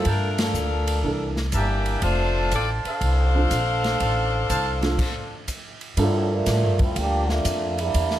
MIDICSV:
0, 0, Header, 1, 8, 480
1, 0, Start_track
1, 0, Tempo, 492611
1, 57, Time_signature, 4, 2, 24, 8
1, 7981, End_track
2, 0, Start_track
2, 0, Title_t, "Trumpet section"
2, 0, Program_c, 0, 61
2, 54, Note_on_c, 0, 70, 71
2, 55, Note_on_c, 0, 81, 83
2, 56, Note_on_c, 0, 77, 67
2, 56, Note_on_c, 0, 79, 65
2, 273, Note_off_c, 0, 70, 0
2, 274, Note_off_c, 0, 77, 0
2, 274, Note_off_c, 0, 79, 0
2, 274, Note_off_c, 0, 81, 0
2, 1495, Note_on_c, 0, 76, 72
2, 1497, Note_on_c, 0, 70, 78
2, 1497, Note_on_c, 0, 74, 68
2, 1498, Note_on_c, 0, 81, 83
2, 1962, Note_off_c, 0, 74, 0
2, 1963, Note_off_c, 0, 81, 0
2, 1974, Note_on_c, 0, 72, 80
2, 1974, Note_on_c, 0, 74, 72
2, 1975, Note_on_c, 0, 77, 74
2, 1975, Note_on_c, 0, 81, 90
2, 1976, Note_off_c, 0, 76, 0
2, 1977, Note_off_c, 0, 70, 0
2, 3322, Note_off_c, 0, 74, 0
2, 3323, Note_off_c, 0, 72, 0
2, 3323, Note_off_c, 0, 77, 0
2, 3323, Note_off_c, 0, 81, 0
2, 3892, Note_on_c, 0, 72, 69
2, 3893, Note_on_c, 0, 74, 65
2, 3893, Note_on_c, 0, 77, 65
2, 3894, Note_on_c, 0, 81, 74
2, 4360, Note_off_c, 0, 72, 0
2, 4361, Note_off_c, 0, 74, 0
2, 4361, Note_off_c, 0, 77, 0
2, 4361, Note_off_c, 0, 81, 0
2, 4380, Note_on_c, 0, 72, 75
2, 4381, Note_on_c, 0, 77, 72
2, 4384, Note_on_c, 0, 81, 85
2, 4385, Note_on_c, 0, 74, 76
2, 4598, Note_off_c, 0, 72, 0
2, 4599, Note_off_c, 0, 77, 0
2, 4601, Note_off_c, 0, 74, 0
2, 4601, Note_off_c, 0, 81, 0
2, 7981, End_track
3, 0, Start_track
3, 0, Title_t, "Saxophone section"
3, 0, Program_c, 1, 65
3, 70, Note_on_c, 1, 57, 78
3, 72, Note_on_c, 1, 62, 79
3, 73, Note_on_c, 1, 70, 94
3, 75, Note_on_c, 1, 53, 80
3, 381, Note_off_c, 1, 62, 0
3, 385, Note_off_c, 1, 53, 0
3, 386, Note_off_c, 1, 57, 0
3, 388, Note_off_c, 1, 70, 0
3, 392, Note_on_c, 1, 62, 68
3, 396, Note_on_c, 1, 69, 66
3, 397, Note_on_c, 1, 53, 67
3, 398, Note_on_c, 1, 70, 77
3, 986, Note_off_c, 1, 53, 0
3, 1307, Note_off_c, 1, 62, 0
3, 1309, Note_off_c, 1, 69, 0
3, 1310, Note_off_c, 1, 70, 0
3, 1508, Note_on_c, 1, 67, 81
3, 1509, Note_on_c, 1, 52, 72
3, 1510, Note_on_c, 1, 58, 71
3, 1510, Note_on_c, 1, 62, 73
3, 1949, Note_off_c, 1, 67, 0
3, 1950, Note_off_c, 1, 52, 0
3, 1951, Note_off_c, 1, 58, 0
3, 1951, Note_off_c, 1, 62, 0
3, 1969, Note_on_c, 1, 72, 100
3, 1973, Note_on_c, 1, 65, 86
3, 1975, Note_on_c, 1, 57, 84
3, 1977, Note_on_c, 1, 62, 85
3, 2453, Note_off_c, 1, 72, 0
3, 2455, Note_off_c, 1, 65, 0
3, 2456, Note_off_c, 1, 57, 0
3, 2457, Note_off_c, 1, 62, 0
3, 2471, Note_on_c, 1, 69, 76
3, 2472, Note_on_c, 1, 60, 75
3, 2475, Note_on_c, 1, 74, 93
3, 2479, Note_on_c, 1, 65, 78
3, 2613, Note_off_c, 1, 69, 0
3, 2614, Note_off_c, 1, 60, 0
3, 2617, Note_off_c, 1, 74, 0
3, 2620, Note_off_c, 1, 65, 0
3, 2796, Note_on_c, 1, 62, 83
3, 2800, Note_on_c, 1, 72, 85
3, 2800, Note_on_c, 1, 77, 102
3, 2805, Note_on_c, 1, 69, 80
3, 5308, Note_off_c, 1, 62, 0
3, 5310, Note_off_c, 1, 72, 0
3, 5310, Note_off_c, 1, 77, 0
3, 5313, Note_off_c, 1, 69, 0
3, 7981, End_track
4, 0, Start_track
4, 0, Title_t, "Upright piano"
4, 0, Program_c, 2, 0
4, 1007, Note_on_c, 2, 52, 52
4, 1009, Note_on_c, 2, 58, 46
4, 1021, Note_on_c, 2, 62, 48
4, 1026, Note_on_c, 2, 69, 56
4, 1303, Note_off_c, 2, 52, 0
4, 1304, Note_off_c, 2, 58, 0
4, 1310, Note_off_c, 2, 62, 0
4, 1312, Note_off_c, 2, 69, 0
4, 3257, Note_on_c, 2, 53, 62
4, 3259, Note_on_c, 2, 60, 56
4, 3267, Note_on_c, 2, 62, 57
4, 3270, Note_on_c, 2, 69, 65
4, 3400, Note_off_c, 2, 53, 0
4, 3401, Note_off_c, 2, 60, 0
4, 3405, Note_off_c, 2, 62, 0
4, 3407, Note_off_c, 2, 69, 0
4, 4687, Note_on_c, 2, 53, 55
4, 4693, Note_on_c, 2, 60, 49
4, 4702, Note_on_c, 2, 62, 49
4, 4710, Note_on_c, 2, 69, 64
4, 4836, Note_off_c, 2, 53, 0
4, 4839, Note_off_c, 2, 60, 0
4, 4843, Note_off_c, 2, 62, 0
4, 4847, Note_off_c, 2, 69, 0
4, 5819, Note_on_c, 2, 55, 68
4, 5821, Note_on_c, 2, 58, 58
4, 5824, Note_on_c, 2, 62, 63
4, 5831, Note_on_c, 2, 65, 65
4, 5836, Note_on_c, 2, 69, 73
4, 7165, Note_off_c, 2, 55, 0
4, 7166, Note_off_c, 2, 58, 0
4, 7167, Note_off_c, 2, 62, 0
4, 7171, Note_off_c, 2, 65, 0
4, 7173, Note_off_c, 2, 69, 0
4, 7981, End_track
5, 0, Start_track
5, 0, Title_t, "Trombone section"
5, 0, Program_c, 3, 61
5, 5840, Note_on_c, 3, 58, 97
5, 5842, Note_on_c, 3, 50, 86
5, 5845, Note_on_c, 3, 53, 86
5, 5847, Note_on_c, 3, 45, 83
5, 6131, Note_off_c, 3, 58, 0
5, 6132, Note_off_c, 3, 50, 0
5, 6134, Note_off_c, 3, 53, 0
5, 6135, Note_off_c, 3, 45, 0
5, 6150, Note_on_c, 3, 53, 83
5, 6152, Note_on_c, 3, 62, 91
5, 6156, Note_on_c, 3, 58, 82
5, 6158, Note_on_c, 3, 57, 84
5, 6626, Note_off_c, 3, 53, 0
5, 6627, Note_off_c, 3, 62, 0
5, 6629, Note_off_c, 3, 58, 0
5, 6630, Note_off_c, 3, 57, 0
5, 6637, Note_on_c, 3, 53, 79
5, 6638, Note_on_c, 3, 64, 91
5, 6641, Note_on_c, 3, 57, 83
5, 6642, Note_on_c, 3, 60, 82
5, 6787, Note_off_c, 3, 53, 0
5, 6787, Note_off_c, 3, 64, 0
5, 6789, Note_off_c, 3, 57, 0
5, 6789, Note_off_c, 3, 60, 0
5, 6803, Note_on_c, 3, 58, 94
5, 6805, Note_on_c, 3, 53, 94
5, 6806, Note_on_c, 3, 62, 93
5, 6807, Note_on_c, 3, 67, 106
5, 7090, Note_off_c, 3, 58, 0
5, 7096, Note_off_c, 3, 62, 0
5, 7102, Note_on_c, 3, 58, 90
5, 7103, Note_on_c, 3, 57, 92
5, 7107, Note_on_c, 3, 62, 89
5, 7108, Note_on_c, 3, 65, 103
5, 7115, Note_off_c, 3, 53, 0
5, 7116, Note_off_c, 3, 67, 0
5, 7582, Note_off_c, 3, 57, 0
5, 7582, Note_off_c, 3, 58, 0
5, 7585, Note_off_c, 3, 62, 0
5, 7585, Note_off_c, 3, 65, 0
5, 7596, Note_on_c, 3, 58, 82
5, 7596, Note_on_c, 3, 64, 96
5, 7598, Note_on_c, 3, 62, 91
5, 7601, Note_on_c, 3, 55, 86
5, 7981, Note_off_c, 3, 55, 0
5, 7981, Note_off_c, 3, 58, 0
5, 7981, Note_off_c, 3, 62, 0
5, 7981, Note_off_c, 3, 64, 0
5, 7981, End_track
6, 0, Start_track
6, 0, Title_t, "Upright bass"
6, 0, Program_c, 4, 32
6, 56, Note_on_c, 4, 43, 79
6, 515, Note_off_c, 4, 43, 0
6, 521, Note_on_c, 4, 38, 82
6, 994, Note_off_c, 4, 38, 0
6, 1016, Note_on_c, 4, 36, 75
6, 1482, Note_off_c, 4, 36, 0
6, 1488, Note_on_c, 4, 31, 81
6, 1958, Note_off_c, 4, 31, 0
6, 1968, Note_on_c, 4, 29, 78
6, 2438, Note_off_c, 4, 29, 0
6, 2453, Note_on_c, 4, 33, 84
6, 2756, Note_off_c, 4, 33, 0
6, 2931, Note_on_c, 4, 36, 81
6, 3400, Note_off_c, 4, 36, 0
6, 3420, Note_on_c, 4, 34, 82
6, 3885, Note_off_c, 4, 34, 0
6, 3901, Note_on_c, 4, 33, 84
6, 4366, Note_off_c, 4, 33, 0
6, 4382, Note_on_c, 4, 36, 79
6, 4847, Note_off_c, 4, 36, 0
6, 5817, Note_on_c, 4, 43, 86
6, 6284, Note_off_c, 4, 43, 0
6, 6298, Note_on_c, 4, 45, 90
6, 6459, Note_off_c, 4, 45, 0
6, 6459, Note_on_c, 4, 43, 55
6, 6608, Note_off_c, 4, 43, 0
6, 6614, Note_on_c, 4, 41, 63
6, 6765, Note_off_c, 4, 41, 0
6, 6780, Note_on_c, 4, 38, 82
6, 7245, Note_off_c, 4, 38, 0
6, 7256, Note_on_c, 4, 41, 86
6, 7723, Note_off_c, 4, 41, 0
6, 7741, Note_on_c, 4, 40, 84
6, 7981, Note_off_c, 4, 40, 0
6, 7981, End_track
7, 0, Start_track
7, 0, Title_t, "Muted upright bass strokes"
7, 2776, Note_on_c, 9, 29, 39
7, 2873, Note_off_c, 9, 29, 0
7, 7981, End_track
8, 0, Start_track
8, 0, Title_t, "Drums"
8, 46, Note_on_c, 9, 51, 56
8, 56, Note_on_c, 9, 36, 22
8, 144, Note_off_c, 9, 51, 0
8, 153, Note_off_c, 9, 36, 0
8, 374, Note_on_c, 9, 51, 60
8, 378, Note_on_c, 9, 38, 71
8, 471, Note_off_c, 9, 51, 0
8, 476, Note_off_c, 9, 38, 0
8, 529, Note_on_c, 9, 44, 58
8, 626, Note_off_c, 9, 44, 0
8, 852, Note_on_c, 9, 51, 60
8, 949, Note_off_c, 9, 51, 0
8, 1012, Note_on_c, 9, 36, 18
8, 1110, Note_off_c, 9, 36, 0
8, 1329, Note_on_c, 9, 38, 32
8, 1426, Note_off_c, 9, 38, 0
8, 1481, Note_on_c, 9, 44, 52
8, 1481, Note_on_c, 9, 51, 55
8, 1492, Note_on_c, 9, 36, 23
8, 1578, Note_off_c, 9, 44, 0
8, 1578, Note_off_c, 9, 51, 0
8, 1589, Note_off_c, 9, 36, 0
8, 1809, Note_on_c, 9, 51, 42
8, 1906, Note_off_c, 9, 51, 0
8, 1965, Note_on_c, 9, 51, 55
8, 1973, Note_on_c, 9, 36, 21
8, 2063, Note_off_c, 9, 51, 0
8, 2071, Note_off_c, 9, 36, 0
8, 2450, Note_on_c, 9, 44, 52
8, 2450, Note_on_c, 9, 51, 58
8, 2455, Note_on_c, 9, 36, 18
8, 2547, Note_off_c, 9, 44, 0
8, 2547, Note_off_c, 9, 51, 0
8, 2552, Note_off_c, 9, 36, 0
8, 2778, Note_on_c, 9, 51, 44
8, 2876, Note_off_c, 9, 51, 0
8, 2935, Note_on_c, 9, 51, 53
8, 2937, Note_on_c, 9, 36, 23
8, 3033, Note_off_c, 9, 51, 0
8, 3035, Note_off_c, 9, 36, 0
8, 3417, Note_on_c, 9, 44, 50
8, 3417, Note_on_c, 9, 51, 58
8, 3419, Note_on_c, 9, 36, 19
8, 3515, Note_off_c, 9, 44, 0
8, 3515, Note_off_c, 9, 51, 0
8, 3516, Note_off_c, 9, 36, 0
8, 3744, Note_on_c, 9, 51, 39
8, 3748, Note_on_c, 9, 38, 36
8, 3841, Note_off_c, 9, 51, 0
8, 3846, Note_off_c, 9, 38, 0
8, 3899, Note_on_c, 9, 51, 54
8, 3902, Note_on_c, 9, 36, 19
8, 3997, Note_off_c, 9, 51, 0
8, 3999, Note_off_c, 9, 36, 0
8, 4382, Note_on_c, 9, 44, 50
8, 4382, Note_on_c, 9, 51, 65
8, 4383, Note_on_c, 9, 36, 24
8, 4479, Note_off_c, 9, 44, 0
8, 4479, Note_off_c, 9, 51, 0
8, 4481, Note_off_c, 9, 36, 0
8, 4700, Note_on_c, 9, 51, 39
8, 4705, Note_on_c, 9, 38, 39
8, 4798, Note_off_c, 9, 51, 0
8, 4803, Note_off_c, 9, 38, 0
8, 4860, Note_on_c, 9, 36, 76
8, 4860, Note_on_c, 9, 51, 55
8, 4865, Note_on_c, 9, 49, 61
8, 4957, Note_off_c, 9, 36, 0
8, 4957, Note_off_c, 9, 51, 0
8, 4962, Note_off_c, 9, 49, 0
8, 5338, Note_on_c, 9, 44, 58
8, 5338, Note_on_c, 9, 51, 57
8, 5339, Note_on_c, 9, 36, 20
8, 5435, Note_off_c, 9, 44, 0
8, 5435, Note_off_c, 9, 51, 0
8, 5437, Note_off_c, 9, 36, 0
8, 5661, Note_on_c, 9, 51, 40
8, 5758, Note_off_c, 9, 51, 0
8, 5818, Note_on_c, 9, 51, 61
8, 5821, Note_on_c, 9, 36, 25
8, 5915, Note_off_c, 9, 51, 0
8, 5918, Note_off_c, 9, 36, 0
8, 6297, Note_on_c, 9, 44, 50
8, 6297, Note_on_c, 9, 51, 69
8, 6301, Note_on_c, 9, 36, 25
8, 6302, Note_on_c, 9, 38, 39
8, 6394, Note_off_c, 9, 44, 0
8, 6394, Note_off_c, 9, 51, 0
8, 6399, Note_off_c, 9, 36, 0
8, 6399, Note_off_c, 9, 38, 0
8, 6617, Note_on_c, 9, 51, 46
8, 6624, Note_on_c, 9, 36, 56
8, 6714, Note_off_c, 9, 51, 0
8, 6721, Note_off_c, 9, 36, 0
8, 6781, Note_on_c, 9, 51, 63
8, 6783, Note_on_c, 9, 36, 19
8, 6879, Note_off_c, 9, 51, 0
8, 6881, Note_off_c, 9, 36, 0
8, 7106, Note_on_c, 9, 38, 36
8, 7203, Note_off_c, 9, 38, 0
8, 7257, Note_on_c, 9, 44, 58
8, 7257, Note_on_c, 9, 51, 64
8, 7260, Note_on_c, 9, 36, 23
8, 7355, Note_off_c, 9, 44, 0
8, 7355, Note_off_c, 9, 51, 0
8, 7358, Note_off_c, 9, 36, 0
8, 7584, Note_on_c, 9, 51, 47
8, 7682, Note_off_c, 9, 51, 0
8, 7740, Note_on_c, 9, 36, 19
8, 7740, Note_on_c, 9, 51, 63
8, 7837, Note_off_c, 9, 51, 0
8, 7838, Note_off_c, 9, 36, 0
8, 7897, Note_on_c, 9, 38, 29
8, 7981, Note_off_c, 9, 38, 0
8, 7981, End_track
0, 0, End_of_file